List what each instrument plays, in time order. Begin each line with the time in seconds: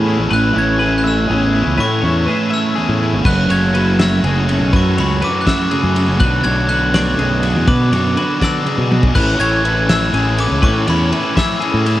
Already playing: clean electric guitar E2 A3 C#4 G#4, fingered electric bass A2, overdriven electric guitar A2 E3, glockenspiel E6
0.04 overdriven electric guitar A3 C#4 E4
0.18 fingered electric bass A1
0.29 fingered electric bass A1, overdriven electric guitar A2 E3 A3 C#4 E4, clean electric guitar B4
0.33 glockenspiel F#6
0.53 fingered electric bass A1, overdriven electric guitar A3 C#4 E4, clean electric guitar C#5
0.58 glockenspiel G#6
0.78 overdriven electric guitar E3 A3 C#4 E4, clean electric guitar G#4 B4
0.98 glockenspiel F#6
1.04 overdriven electric guitar A3 C#4 E4, clean electric guitar E5, glockenspiel E6
1.27 fingered electric bass A1, clean electric guitar E2 G#4, overdriven electric guitar E3 A3 C#4 E4
1.52 overdriven electric guitar A3 C#4 E4
1.66 fingered electric bass C#2
1.77 overdriven electric guitar A2 E3 A3 C#4 E4, fingered electric bass A2, clean electric guitar B4, glockenspiel C#6
2.01 fingered electric bass E2, overdriven electric guitar A3 C#4 E4, clean electric guitar C#5
2.25 overdriven electric guitar E3 A3 C#4 E4, clean electric guitar G#4 B4
2.50 overdriven electric guitar A3 C#4 E4, clean electric guitar E5, glockenspiel E6
2.75 clean electric guitar E2 G#4, overdriven electric guitar E3 A3 C#4 E4
2.89 fingered electric bass A2
3.00 overdriven electric guitar A3 C#4 E4
3.13 fingered electric bass G#1
3.24 fingered electric bass F#1, clean electric guitar F#2 B4, overdriven electric guitar F#3 A3 C#4 F#4, glockenspiel F#6, kick, crash
3.49 fingered electric bass F#1, overdriven electric guitar A3 C#4 F#4, clean electric guitar C#5, glockenspiel G#6, ride
3.74 overdriven electric guitar F#3 A3 C#4 F#4, clean electric guitar E4 B4, ride
3.99 overdriven electric guitar A3 C#4 F#4, clean electric guitar E5, glockenspiel E6, snare, ride
4.23 fingered electric bass F#1, clean electric guitar C#3 G#4, overdriven electric guitar F#3 A3 C#4 F#4, ride
4.48 overdriven electric guitar A3 C#4 F#4, clean electric guitar B3, ride
4.60 fingered electric bass B1, clean electric guitar C#4
4.72 fingered electric bass F#2, clean electric guitar F#2 B4, overdriven electric guitar F#3 A3 C#4 F#4, glockenspiel C#6, kick, ride
4.97 fingered electric bass C#2, overdriven electric guitar A3 C#4 F#4, clean electric guitar C#5, glockenspiel B5, ride
5.21 overdriven electric guitar F#3 A3 C#4 F#4, clean electric guitar E4 B4, glockenspiel D6, ride
5.41 glockenspiel F#6
5.46 overdriven electric guitar A3 C#4 F#4, clean electric guitar E5, glockenspiel E6, kick, snare, ride
5.70 clean electric guitar C#3 G#4, overdriven electric guitar F#3 A3 C#4 F#4, ride
5.83 fingered electric bass F#2
5.95 overdriven electric guitar A3 C#4 F#4, ride
6.08 fingered electric bass F#1
6.18 fingered electric bass B1, overdriven electric guitar B2 F#3 B3 D4 F#4, clean electric guitar D3 A3 B4, glockenspiel F#6, kick, ride
6.43 fingered electric bass B1, overdriven electric guitar B3 D4 F#4, clean electric guitar C#5, glockenspiel G#6, ride
6.67 clean electric guitar D3 B4, overdriven electric guitar F#3 B3 D4 F#4, glockenspiel F#6, ride
6.92 clean electric guitar A3 D5, overdriven electric guitar B3 D4 F#4, glockenspiel C#6, snare, ride
7.17 fingered electric bass B1, clean electric guitar F#2 G#4, overdriven electric guitar F#3 B3 D4 F#4, ride
7.42 overdriven electric guitar B3 D4 F#4, ride
7.55 fingered electric bass E2, clean electric guitar D4
7.66 overdriven electric guitar B2 F#3 B3 D4 F#4, fingered electric bass B2, clean electric guitar B4, glockenspiel D6, kick, ride
7.91 fingered electric bass F#2, overdriven electric guitar B3 D4 F#4, clean electric guitar C#5, ride
8.04 clean electric guitar D4
8.16 clean electric guitar D3 B4, overdriven electric guitar F#3 B3 D4 F#4, ride
8.40 clean electric guitar D3 D5, overdriven electric guitar B3 D4 F#4, kick, snare, ride
8.45 glockenspiel E6
8.64 clean electric guitar C#3 G#4, overdriven electric guitar F#3 B3 D4 F#4, ride
8.78 fingered electric bass B2
8.89 clean electric guitar B2, overdriven electric guitar B3 D4 F#4, high tom
9.03 fingered electric bass B1, kick
9.13 fingered electric bass A1, overdriven electric guitar A2 E3 A3 C#4 E4, clean electric guitar B4, glockenspiel F#6, kick, crash
9.37 fingered electric bass A1, overdriven electric guitar A3 C#4 E4, clean electric guitar C#5, glockenspiel G#6, ride
9.62 overdriven electric guitar E3 A3 C#4 E4, clean electric guitar B4, ride
9.88 overdriven electric guitar A3 C#4 E4, clean electric guitar E5, glockenspiel E6, snare, ride
10.12 fingered electric bass A1, overdriven electric guitar E3 A3 C#4 E4, clean electric guitar G#4, ride
10.37 overdriven electric guitar A3 C#4 E4, glockenspiel D6, ride
10.51 fingered electric bass C#2
10.61 overdriven electric guitar A2 E3 A3 C#4 E4, fingered electric bass A2, clean electric guitar B4, glockenspiel C#6, kick, ride
10.87 fingered electric bass E2, overdriven electric guitar A3 C#4 E4, clean electric guitar C#5, glockenspiel B5, ride
11.11 overdriven electric guitar E3 A3 C#4 E4, clean electric guitar B4, ride
11.35 overdriven electric guitar A3 C#4 E4, clean electric guitar E5, glockenspiel E6, kick, snare, ride
11.60 overdriven electric guitar E3 A3 C#4 E4, clean electric guitar G#4, ride
11.74 fingered electric bass A2
11.85 overdriven electric guitar A3 C#4 E4, ride